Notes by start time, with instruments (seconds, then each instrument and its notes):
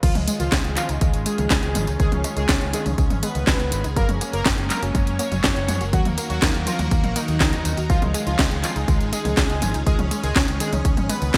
0.03 fingered electric bass C#2, string machine D#3 G#3 C#4 F4 G#4, synth arpeggio sound D#3, analog polysynth F3 F4, kick, closed hi-hat, crash, tambourine
0.15 fingered electric bass C#2, analog polysynth G#3, closed hi-hat, high tom, tambourine
0.28 analog polysynth G#3, synth arpeggio sound G#3, closed hi-hat, tambourine
0.40 fingered electric bass C#2, synth arpeggio sound D#3, analog polysynth F3 F4, closed hi-hat, tambourine
0.52 fingered electric bass C#2, analog polysynth G#3, synth arpeggio sound C#4, kick, snare, clap, closed hi-hat, tambourine
0.64 fingered electric bass C#2, analog polysynth G#3, closed hi-hat, tambourine
0.77 synth arpeggio sound D#3, analog polysynth F3 F4, clap, closed hi-hat, tambourine
0.89 fingered electric bass C#2, analog polysynth G#3, synth arpeggio sound D#4, closed hi-hat, tambourine
1.01 fingered electric bass C#2, synth arpeggio sound D#3, analog polysynth G#3, kick, closed hi-hat, tambourine
1.14 fingered electric bass G#1, analog polysynth G#3, closed hi-hat, tambourine
1.26 synth arpeggio sound G#3, analog polysynth G#3 G#4, closed hi-hat, tambourine
1.38 fingered electric bass C#2, synth arpeggio sound D#3, closed hi-hat, high tom, tambourine
1.50 fingered electric bass C#2, synth arpeggio sound C#4, kick, snare, clap, closed hi-hat, tambourine
1.63 fingered electric bass C#2, closed hi-hat, tambourine
1.75 fingered electric bass G#1, synth arpeggio sound D#3, closed hi-hat, high tom, tambourine
1.87 fingered electric bass C#2, synth arpeggio sound D#4, closed hi-hat, tambourine
2.00 fingered electric bass C#2, synth arpeggio sound D#3, analog polysynth G#3 G#4, kick, closed hi-hat, tambourine
2.12 fingered electric bass C#2, analog polysynth C#4, closed hi-hat, high tom, tambourine
2.24 synth arpeggio sound G#3, analog polysynth C#4, closed hi-hat, tambourine
2.37 fingered electric bass C#2, synth arpeggio sound D#3, analog polysynth G#3 G#4, closed hi-hat, tambourine
2.49 fingered electric bass C#2, analog polysynth C#4, synth arpeggio sound C#4, kick, snare, clap, closed hi-hat, tambourine
2.61 fingered electric bass C#2, analog polysynth C#4, closed hi-hat, tambourine
2.73 synth arpeggio sound D#3, analog polysynth G#3 G#4, closed hi-hat, tambourine
2.86 fingered electric bass C#2, analog polysynth C#4, synth arpeggio sound D#4, closed hi-hat, high tom, tambourine
2.98 fingered electric bass C#2, synth arpeggio sound D#3, analog polysynth C#4, kick, closed hi-hat, tambourine
3.10 fingered electric bass G#1, analog polysynth C#4, closed hi-hat, high tom, tambourine
3.23 synth arpeggio sound G#3, analog polysynth B3 B4, closed hi-hat, tambourine
3.35 fingered electric bass C#2, synth arpeggio sound D#3, closed hi-hat, tambourine
3.47 fingered electric bass C#2, synth arpeggio sound C#4, kick, snare, clap, closed hi-hat, tambourine
3.60 fingered electric bass C#2, closed hi-hat, tambourine
3.72 fingered electric bass G#1, synth arpeggio sound D#3, closed hi-hat, tambourine
3.84 fingered electric bass C#2, synth arpeggio sound D#4, closed hi-hat, tambourine
3.96 fingered electric bass F#1, string machine F#3 A#3 C#4, synth arpeggio sound F#3, analog polysynth A#3 A#4, kick, closed hi-hat, tambourine
4.09 fingered electric bass F#1, analog polysynth C#4, closed hi-hat, high tom, tambourine
4.21 synth arpeggio sound A#3, analog polysynth C#4, closed hi-hat, tambourine
4.33 fingered electric bass F#1, synth arpeggio sound F#3, analog polysynth A#3 A#4, closed hi-hat, tambourine
4.45 fingered electric bass F#1, analog polysynth C#4, synth arpeggio sound C#4, kick, snare, clap, closed hi-hat, tambourine
4.58 fingered electric bass F#1, analog polysynth C#4, closed hi-hat, tambourine
4.70 synth arpeggio sound F#3, analog polysynth A#3 A#4, clap, closed hi-hat, tambourine
4.82 fingered electric bass F#1, analog polysynth C#4, synth arpeggio sound F#4, closed hi-hat, tambourine
4.95 fingered electric bass F#1, synth arpeggio sound F#3, analog polysynth C#4, kick, closed hi-hat, tambourine
5.07 fingered electric bass F#2, analog polysynth C#4, closed hi-hat, tambourine
5.19 synth arpeggio sound A#3, analog polysynth C#4 C#5, closed hi-hat, tambourine
5.32 fingered electric bass F#1, synth arpeggio sound F#3, closed hi-hat, high tom, tambourine
5.44 fingered electric bass F#1, synth arpeggio sound C#4, kick, snare, clap, closed hi-hat, tambourine
5.56 fingered electric bass F#1, closed hi-hat, tambourine
5.68 fingered electric bass F#2, synth arpeggio sound F#3, closed hi-hat, high tom, tambourine
5.81 fingered electric bass F#1, synth arpeggio sound F#4, closed hi-hat, tambourine
5.93 fingered electric bass D#2, synth arpeggio sound D#3, string machine D#3 F#4 A#4, analog polysynth F#3 F#4, kick, closed hi-hat, tambourine
6.05 fingered electric bass D#2, analog polysynth A#3, closed hi-hat, high tom, tambourine
6.17 analog polysynth A#3, synth arpeggio sound A#3, closed hi-hat, tambourine
6.30 fingered electric bass D#2, synth arpeggio sound D#3, analog polysynth F#3 F#4, closed hi-hat, tambourine
6.42 fingered electric bass D#2, analog polysynth A#3, synth arpeggio sound D#4, kick, snare, clap, closed hi-hat, tambourine
6.54 fingered electric bass D#2, analog polysynth A#3, closed hi-hat, tambourine
6.67 synth arpeggio sound D#3, analog polysynth F3 F4, closed hi-hat, tambourine
6.79 fingered electric bass D#2, analog polysynth A#3, synth arpeggio sound F#4, closed hi-hat, high tom, tambourine
6.91 fingered electric bass D#2, synth arpeggio sound D#3, analog polysynth A#3, kick, closed hi-hat, tambourine
7.04 fingered electric bass A#1, analog polysynth A#3, closed hi-hat, high tom, tambourine
7.16 analog polysynth D#3 D#4, synth arpeggio sound A#3, closed hi-hat, tambourine
7.28 fingered electric bass D#2, synth arpeggio sound D#3, closed hi-hat, tambourine
7.41 fingered electric bass C#2, synth arpeggio sound D#4, kick, snare, clap, closed hi-hat, tambourine
7.53 fingered electric bass D#2, closed hi-hat, tambourine
7.65 fingered electric bass D#2, synth arpeggio sound D#3, closed hi-hat, tambourine
7.77 fingered electric bass D#2, synth arpeggio sound F#4, closed hi-hat, tambourine
7.89 fingered electric bass C#2, synth arpeggio sound D#3, analog polysynth F3 F4, string machine G#3 C#4 F4 G#4, kick, closed hi-hat, tambourine
8.02 fingered electric bass C#2, analog polysynth G#3, closed hi-hat, high tom, tambourine
8.14 analog polysynth G#3, synth arpeggio sound G#3, closed hi-hat, tambourine
8.27 fingered electric bass C#2, synth arpeggio sound D#3, analog polysynth F3 F4, closed hi-hat, tambourine
8.39 fingered electric bass C#2, analog polysynth G#3, synth arpeggio sound C#4, kick, snare, clap, closed hi-hat, tambourine
8.51 fingered electric bass C#2, analog polysynth G#3, closed hi-hat, tambourine
8.63 synth arpeggio sound D#3, analog polysynth F3 F4, clap, closed hi-hat, tambourine
8.76 fingered electric bass C#2, analog polysynth G#3, synth arpeggio sound D#4, closed hi-hat, tambourine
8.88 fingered electric bass C#2, synth arpeggio sound D#3, analog polysynth G#3, kick, closed hi-hat, tambourine
9.00 fingered electric bass G#1, analog polysynth G#3, closed hi-hat, tambourine
9.13 analog polysynth G#3 G#4, synth arpeggio sound G#3, closed hi-hat, tambourine
9.25 fingered electric bass C#2, synth arpeggio sound D#3, closed hi-hat, high tom, tambourine
9.37 fingered electric bass C#2, synth arpeggio sound C#4, kick, snare, clap, closed hi-hat, tambourine
9.50 fingered electric bass C#2, closed hi-hat, tambourine
9.62 fingered electric bass G#1, synth arpeggio sound D#3, closed hi-hat, high tom, tambourine
9.74 fingered electric bass C#2, synth arpeggio sound D#4, closed hi-hat, tambourine
9.86 fingered electric bass C#2, synth arpeggio sound D#3, analog polysynth G#3 G#4, kick, closed hi-hat, tambourine
9.98 fingered electric bass C#2, analog polysynth C#4, closed hi-hat, high tom, tambourine
10.11 synth arpeggio sound G#3, analog polysynth C#4, closed hi-hat, tambourine
10.23 fingered electric bass C#2, synth arpeggio sound D#3, analog polysynth G#3 G#4, closed hi-hat, tambourine
10.36 fingered electric bass C#2, synth arpeggio sound C#4, analog polysynth C#4, kick, snare, clap, closed hi-hat, tambourine
10.48 fingered electric bass C#2, analog polysynth C#4, closed hi-hat, tambourine
10.60 synth arpeggio sound D#3, analog polysynth G#3 G#4, closed hi-hat, tambourine
10.73 fingered electric bass C#2, analog polysynth C#4, synth arpeggio sound D#4, closed hi-hat, high tom, tambourine
10.85 fingered electric bass C#2, synth arpeggio sound D#3, analog polysynth C#4, kick, closed hi-hat, tambourine
10.97 fingered electric bass G#1, analog polysynth C#4, closed hi-hat, high tom, tambourine
11.09 synth arpeggio sound G#3, analog polysynth B3 B4, closed hi-hat, tambourine
11.22 fingered electric bass C#2, synth arpeggio sound D#3, closed hi-hat, tambourine
11.34 fingered electric bass C#2, synth arpeggio sound C#4, kick, snare, clap, closed hi-hat, tambourine